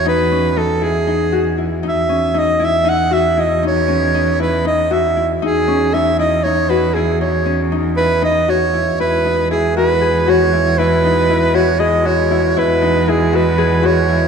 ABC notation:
X:1
M:7/8
L:1/16
Q:1/4=118
K:E
V:1 name="Soprano saxophone"
B4 A2 G6 z2 | e4 d2 e2 f2 e2 d2 | c6 B2 d2 e3 z | G4 e2 d2 c2 B2 G2 |
c4 z2 B2 d2 c4 | B4 G2 B4 c4 | B6 c2 d2 c4 | B4 G2 B4 c4 |]
V:2 name="Harp"
D2 C2 D2 E2 D2 F2 E2 | D2 C2 D2 E2 D2 F2 E2 | D2 C2 D2 E2 D2 F2 E2 | D2 C2 D2 E2 D2 F2 E2 |
D2 C2 D2 E2 D2 F2 E2 | E2 D2 E2 F2 G2 F2 E2 | E2 D2 E2 F2 G2 F2 E2 | E2 D2 E2 F2 G2 F2 E2 |]
V:3 name="Woodwind section" clef=bass
z12 z2 | z12 z2 | z12 z2 | z12 z2 |
z12 z2 | [B,,G,E]12- [B,,G,E]2- | [B,,G,E]12- [B,,G,E]2- | [B,,G,E]12- [B,,G,E]2 |]
V:4 name="Cello" clef=bass
E,,12- E,,2 | E,,12- E,,2- | E,,12- E,,2 | E,,12- E,,2- |
E,,12- E,,2 | E,,12- E,,2- | E,,12- E,,2 | E,,12- E,,2 |]